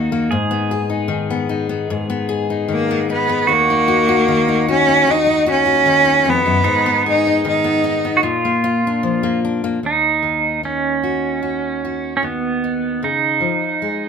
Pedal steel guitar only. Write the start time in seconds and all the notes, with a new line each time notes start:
Already playing: F#4
0.31 G#4
3.47 F#4
6.64 D#4
8.17 F#4
8.23 F4
9.86 D#4
10.65 C#4
12.17 C#4
12.24 B3
13.04 D#4